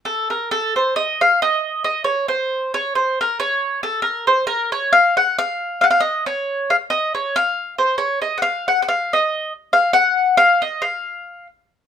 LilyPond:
\new Staff \with { instrumentName = "Mandolin" } { \time 9/8 \key f \phrygian \tempo 4. = 91 a'8 bes'8 a'8 c''8 ees''8 f''8 ees''4 ees''8 | des''8 c''4 des''8 c''8 bes'8 des''4 a'8 | bes'8 c''8 bes'8 des''8 f''8 ges''8 f''4 f''32 ges''32 f''16 | ees''8 des''4 f''8 ees''8 des''8 f''4 c''8 |
des''8 ees''16. ges''32 f''8 ges''16. ges''32 f''8 ees''4 r8 f''8 | ges''4 f''8 ees''8 f''4. r4 | }